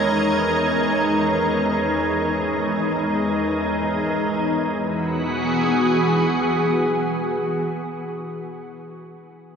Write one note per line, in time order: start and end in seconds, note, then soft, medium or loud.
0.00 4.48 E2 medium
0.00 4.49 G#3 medium
0.00 4.49 D#4 medium
0.00 4.48 A#4 medium
0.00 4.49 C#5 medium
4.49 8.04 E3 medium
4.63 8.04 B3 medium
4.77 8.04 F#4 medium
4.91 8.04 G#4 medium